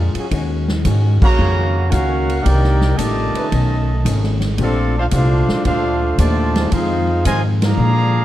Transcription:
Already playing: upright bass F2, hollow-body jazz guitar A#2 G#3 D4 F4, trombone section G#3 D4 F4, trumpet section D4 G#4 A#4 F5
0.15 trombone section F#3 C#4 F4 G#4, muted upright bass stroke, ride
0.31 upright bass D#2, hollow-body jazz guitar D#3 G#3 C#4 F#4, kick, ride
0.68 snare
0.85 upright bass G#2, hollow-body jazz guitar D#3 G#3 C#4 F#4, kick, hi-hat pedal, ride
1.21 trombone section C#3 A#3 F#4, trumpet section F#4 C#5 F5 A#5, muted upright bass stroke, kick, crash
1.38 upright bass F2, hollow-body jazz guitar D#3 G#3 C#4 F#4, trombone section F#3 C#4 F4 G#4
1.90 upright bass C#2, hollow-body jazz guitar D#3 G#3 C#4, trombone section A#3 C#4 F#4, trumpet section C#4 A#4 F5 F#5, kick, hi-hat pedal, ride
1.94 hollow-body jazz guitar F#4
2.29 ride
2.42 upright bass C2, hollow-body jazz guitar C3 D#3, trombone section A#3 D#4 G4, trumpet section D#4 A#4 D5 F5 G5
2.46 hollow-body jazz guitar A#3 D4, kick, ride
2.64 snare
2.81 snare
2.97 upright bass A1, trombone section A#2 D#3 A3, hollow-body jazz guitar C3 D#3 A#3 D4, trumpet section G4 D5 D#5 A5, kick, hi-hat pedal, ride
3.35 trombone section A3 C#4 D#4 B4, muted upright bass stroke, ride
3.51 upright bass B1, hollow-body jazz guitar B2 D#3 A3 C#4, kick, ride
4.05 upright bass G#1, hollow-body jazz guitar B2 D#3 A3 C#4, kick, hi-hat pedal, ride
4.23 snare
4.40 snare, ride
4.57 upright bass A#1, hollow-body jazz guitar A#2 A3 D4 G4, trombone section F3 A3 D4, kick, ride
4.61 trumpet section C4 F4 A4 D5
4.97 trombone section A3 D4 F4, trumpet section D4 A4 C5 F5
5.11 upright bass C2, hollow-body jazz guitar A#2 A3 D4 G4, trombone section A3 D4 F4, trumpet section D4 A4 C5 F5, kick, hi-hat pedal, ride
5.49 muted upright bass stroke, snare
5.64 upright bass D2, hollow-body jazz guitar A#2 A3 D4 G4, trombone section A3 D4 F4, trumpet section D4 A4 C5 F5, kick, ride
6.18 upright bass D#2, hollow-body jazz guitar A#2 A3 D4 G4, trombone section D3 F3 A3, trumpet section F4 C5 D5 A5, kick, hi-hat pedal, ride
6.55 trombone section F3 C4 D#4 G#4, snare, ride
6.71 hollow-body jazz guitar F2 D#3 G#3 C4, upright bass F2, trombone section G#3 C4 F4, trumpet section D#4 G#4 C5 F5, kick, ride
7.25 hollow-body jazz guitar F2 D#3 G#3 C4, upright bass G#2, trombone section C3 D#3 G#3, trumpet section F4 C5 D#5 G#5, kick, hi-hat pedal, ride
7.62 trombone section D3 F3 A#3, trumpet section G#4 D5 F5 A#5, snare, ride
7.77 upright bass A#2, hollow-body jazz guitar A#2 F3 G#3
7.82 hollow-body jazz guitar D4

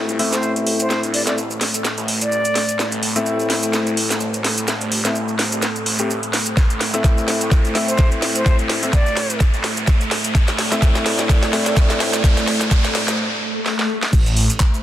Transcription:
Already playing: detuned saw bass A1, grand piano A3 C4 E4, analog synth pad A3 A4 C5 E5, riser
0.09 closed hi-hat, maracas
0.19 detuned saw bass A1, grand piano A3 C4 E4, open hi-hat
0.32 detuned saw bass A1, flute C5, snare, closed hi-hat, maracas
0.43 maracas
0.56 detuned saw bass A1, closed hi-hat, maracas
0.67 open hi-hat
0.80 flute C5, closed hi-hat, maracas
0.90 snare, maracas
1.03 detuned saw bass G1, closed hi-hat, maracas
1.14 flute D5, open hi-hat
1.27 detuned saw bass A1, grand piano A3 C4 E4, flute D5, snare, closed hi-hat, maracas
1.38 maracas
1.51 detuned saw bass A1, maracas
1.61 snare, open hi-hat
1.74 closed hi-hat, maracas
1.85 snare, maracas
1.97 detuned saw bass A1, closed hi-hat, maracas
2.08 open hi-hat
2.21 detuned saw bass A1, flute D5, closed hi-hat, maracas
2.32 maracas
2.45 closed hi-hat, maracas
2.55 snare, open hi-hat
2.69 closed hi-hat, maracas
2.79 detuned saw bass A1, analog synth pad A5, snare, maracas
2.92 closed hi-hat, maracas
3.03 open hi-hat
3.16 detuned saw bass A1, grand piano A3 C4 E4, closed hi-hat, maracas
3.26 maracas
3.39 maracas
3.50 detuned saw bass A1, snare, open hi-hat
3.63 closed hi-hat, maracas
3.73 snare, maracas
3.87 closed hi-hat, maracas
3.97 detuned saw bass A1, open hi-hat
4.10 detuned saw bass A1, snare, closed hi-hat, maracas
4.20 maracas
4.34 detuned saw bass A1, closed hi-hat, maracas
4.44 snare, open hi-hat
4.58 closed hi-hat, maracas
4.68 snare, maracas
4.81 detuned saw bass G1, closed hi-hat, maracas
4.92 open hi-hat
5.05 detuned saw bass A1, grand piano A3 C4 E4, snare, closed hi-hat, maracas
5.15 maracas
5.28 detuned saw bass A1, maracas
5.39 snare, open hi-hat
5.52 detuned saw bass C2, closed hi-hat, maracas
5.62 snare, maracas
5.76 closed hi-hat, maracas
5.86 detuned saw bass A1, open hi-hat
5.99 grand piano A3 C4 G4, closed hi-hat, maracas
6.10 maracas
6.23 closed hi-hat, maracas
6.33 snare, open hi-hat
6.46 closed hi-hat, maracas
6.57 detuned saw bass A1, analog synth pad E5, kick, snare, maracas
6.70 closed hi-hat, maracas
6.81 snare, open hi-hat
6.94 detuned saw bass A1, grand piano A3 C4 E4, closed hi-hat, maracas
7.04 kick, snare, maracas
7.18 maracas
7.28 detuned saw bass A1, snare, open hi-hat
7.41 closed hi-hat, maracas
7.51 kick, snare, maracas
7.65 closed hi-hat, maracas
7.75 detuned saw bass A1, grand piano A3 C4 E4, snare, open hi-hat
7.88 detuned saw bass A1, flute C5, closed hi-hat, maracas
7.98 kick, snare, maracas
8.11 detuned saw bass A1, closed hi-hat, maracas
8.22 snare, open hi-hat
8.35 flute C5, closed hi-hat, maracas
8.46 kick, snare, maracas
8.59 detuned saw bass G1, closed hi-hat, maracas
8.70 snare, open hi-hat
8.83 detuned saw bass A1, grand piano A3 C4 E4, closed hi-hat, maracas
8.93 flute D5, kick, snare, maracas
9.06 detuned saw bass A1, maracas
9.17 snare, open hi-hat
9.30 closed hi-hat, maracas
9.40 kick, snare, maracas
9.54 detuned saw bass A1, closed hi-hat, maracas
9.64 snare, open hi-hat
9.77 detuned saw bass A1, closed hi-hat, maracas
9.87 kick, snare, maracas
10.01 closed hi-hat, maracas
10.11 snare, open hi-hat
10.24 closed hi-hat, maracas
10.35 detuned saw bass A1, analog synth pad D5, kick, snare, maracas
10.47 snare, closed hi-hat, maracas
10.59 snare, open hi-hat
10.72 detuned saw bass A1, grand piano A3 C4 E4, snare, closed hi-hat, maracas
10.82 kick, snare, maracas
10.95 snare, maracas
11.06 detuned saw bass A1, snare, open hi-hat
11.18 snare, closed hi-hat, maracas
11.29 kick, snare, maracas
11.43 snare, closed hi-hat, maracas
11.53 detuned saw bass A1, grand piano A3 C4 E4, snare, open hi-hat
11.66 detuned saw bass A1, snare, closed hi-hat, maracas
11.76 kick, snare, maracas
11.90 detuned saw bass A1, snare, closed hi-hat, maracas
12.00 snare, open hi-hat
12.13 snare, closed hi-hat, maracas
12.24 kick, snare, maracas
12.37 snare, closed hi-hat, maracas
12.48 snare, open hi-hat
12.61 snare, maracas
12.71 kick, snare, maracas
12.84 detuned saw bass A1, snare, closed hi-hat, maracas
12.95 snare, open hi-hat
13.08 detuned saw bass G1, snare, closed hi-hat, maracas
13.19 swell
13.66 snare
13.79 snare
14.03 snare
14.13 detuned saw bass A1, analog synth pad A3 A4 C5 E5, kick, crash, maracas
14.26 closed hi-hat, maracas
14.37 open hi-hat
14.50 closed hi-hat, maracas
14.60 kick, clap, maracas
14.74 maracas

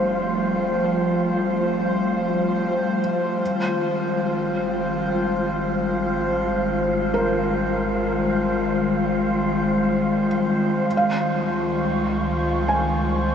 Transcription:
Already playing: analog synth bass F1, analog synth pad F3 G3 A3 C5, harmonium F3 C4, synth texture F4 F5, felt piano C5
3.41 analog synth bass G#1, analog synth pad D#3
3.61 analog synth pad G#3
7.14 felt piano A#4
10.86 analog synth bass C#2
10.97 felt piano F5
11.39 analog synth pad C#6
12.08 analog synth pad F4
12.68 felt piano G#5

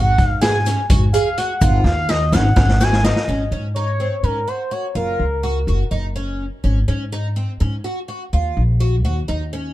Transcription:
Already playing: upright bass G#1, twelve-string acoustic guitar F#4, analog synth lead F#5
0.18 upright bass G#2, kick, snare, closed hi-hat, shaker
0.41 twelve-string acoustic guitar G#4, analog synth lead G#5, snare, closed hi-hat
0.66 twelve-string acoustic guitar C#4, snare, closed hi-hat, shaker
0.90 upright bass G#2, twelve-string acoustic guitar F#4, kick, closed hi-hat
1.13 twelve-string acoustic guitar G#4, analog synth lead F5, closed hi-hat, shaker
1.37 twelve-string acoustic guitar F#4, analog synth lead F#5, closed hi-hat
1.61 upright bass G#1, twelve-string acoustic guitar F4, kick, closed hi-hat, shaker
1.84 upright bass D#2, analog synth lead F5, snare
2.09 twelve-string acoustic guitar D#4, analog synth lead D#5, snare
2.32 upright bass G#1, twelve-string acoustic guitar C#4, analog synth lead F#5, snare, shaker
2.56 upright bass G#1, twelve-string acoustic guitar C#4, kick, snare
2.69 snare
2.80 twelve-string acoustic guitar F#4, analog synth lead G#5, snare, shaker
2.93 snare
3.04 twelve-string acoustic guitar D#4, analog synth lead D#5, snare, shaker
3.16 snare
3.28 upright bass G#1, twelve-string acoustic guitar C#4
3.51 upright bass G#2, twelve-string acoustic guitar C#4
3.75 twelve-string acoustic guitar D#4, analog synth lead C#5
4.00 twelve-string acoustic guitar C4
4.23 upright bass G#2, twelve-string acoustic guitar C#4, analog synth lead A#4
4.48 twelve-string acoustic guitar F#4, analog synth lead C5
4.71 twelve-string acoustic guitar F#4, analog synth lead C#5
4.95 upright bass F#1, twelve-string acoustic guitar F4, analog synth lead A#4
5.20 upright bass C#2
5.43 twelve-string acoustic guitar F#4
5.67 upright bass F#1, twelve-string acoustic guitar F#4
5.91 upright bass F#1, twelve-string acoustic guitar D#4
6.16 twelve-string acoustic guitar C#4
6.64 upright bass G#1, twelve-string acoustic guitar C#4
6.88 upright bass G#2, twelve-string acoustic guitar C#4
7.12 twelve-string acoustic guitar D#4
7.36 twelve-string acoustic guitar C4
7.60 upright bass G#2, twelve-string acoustic guitar C#4
7.84 twelve-string acoustic guitar F#4
8.08 twelve-string acoustic guitar F#4
8.33 upright bass D#2, twelve-string acoustic guitar F4
8.57 upright bass A#1
8.80 twelve-string acoustic guitar F#4
9.05 upright bass D#2, twelve-string acoustic guitar F#4
9.28 upright bass D#2, twelve-string acoustic guitar D#4
9.53 twelve-string acoustic guitar C#4

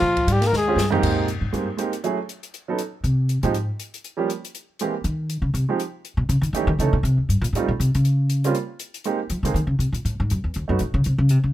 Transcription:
Already playing: alto saxophone F3, trumpet F4
0.02 upright bass A#2
0.17 kick, ride
0.27 upright bass G#2, alto saxophone G3, hi-hat pedal, ride
0.32 trumpet G4
0.41 alto saxophone A#3, snare, ride
0.47 trumpet A#4
0.53 upright bass D#2, alto saxophone G#3, snare
0.57 trumpet G#4
0.67 grand piano C4 C#4 F4 G4
0.76 upright bass G2, snare, hi-hat pedal
0.91 grand piano G#2 A#3 C4 D#4 G4, floor tom
1.03 upright bass A#2, kick, crash
1.28 closed hi-hat
1.41 upright bass G#2
1.53 upright bass G2, grand piano G#3 A#3 C4 D#4 G4, closed hi-hat
1.77 grand piano G#3 A#3 C4 D#4 G4, closed hi-hat
1.93 closed hi-hat
2.04 grand piano F#3 A3 C#4 E4 G#4, closed hi-hat
2.29 closed hi-hat
2.43 closed hi-hat
2.54 closed hi-hat
2.68 grand piano F#3 B3 C#4 D#4 A4
2.78 closed hi-hat
3.04 upright bass C3, closed hi-hat
3.29 closed hi-hat
3.43 upright bass A#2, grand piano F3 G#3 C4 D#4 G4, closed hi-hat
3.54 upright bass G#2, closed hi-hat
3.80 closed hi-hat
3.94 closed hi-hat
4.04 closed hi-hat
4.17 grand piano F3 G3 A#3 C#4 G4
4.30 closed hi-hat
4.45 closed hi-hat
4.55 closed hi-hat
4.79 grand piano E3 G#3 A#3 C4 G4, closed hi-hat
5.04 upright bass D#3, closed hi-hat
5.30 closed hi-hat
5.42 upright bass C#3
5.54 upright bass C3, closed hi-hat
5.69 grand piano F3 G#3 C4 D#4 G4
5.80 closed hi-hat
6.05 closed hi-hat
6.17 upright bass B2
6.29 upright bass C#3, closed hi-hat
6.42 upright bass D#3, closed hi-hat
6.53 upright bass E3, grand piano E3 A3 C#4 D#4 G4, closed hi-hat
6.67 upright bass D#3
6.79 upright bass C#3, grand piano E3 A3 C#4 D#4 A4, closed hi-hat
6.93 upright bass B2
7.03 upright bass C3, closed hi-hat
7.18 upright bass D#2
7.29 upright bass G2, closed hi-hat
7.41 upright bass A#2, closed hi-hat
7.53 upright bass A2, grand piano G3 A3 C4 D#4, closed hi-hat
7.57 grand piano F4
7.68 upright bass A#2
7.80 upright bass C3, closed hi-hat
7.95 upright bass C#3, closed hi-hat
8.05 closed hi-hat
8.30 closed hi-hat
8.44 grand piano G3 A#3 C4 C#4 F4, closed hi-hat
8.55 closed hi-hat
8.79 closed hi-hat
8.94 closed hi-hat
9.04 grand piano G#3 A#3 C4 D#4 G4, closed hi-hat
9.30 upright bass F3, closed hi-hat
9.43 upright bass D3, grand piano G#3 A#3 C4 D#4 G#4, closed hi-hat
9.54 upright bass D#3, closed hi-hat
9.67 upright bass C#3
9.79 upright bass C3, closed hi-hat
9.93 upright bass A#2, closed hi-hat
10.05 upright bass A2, closed hi-hat
10.20 upright bass G#2
10.30 upright bass F#2, closed hi-hat
10.44 upright bass E2
10.54 upright bass D#2, closed hi-hat
10.68 upright bass F#2, grand piano A3 B3 C#4 D#4 F#4
10.79 upright bass A2, closed hi-hat
10.94 upright bass C#3
11.04 upright bass C3, closed hi-hat
11.18 upright bass C#3
11.29 upright bass C3, closed hi-hat
11.44 upright bass C#3

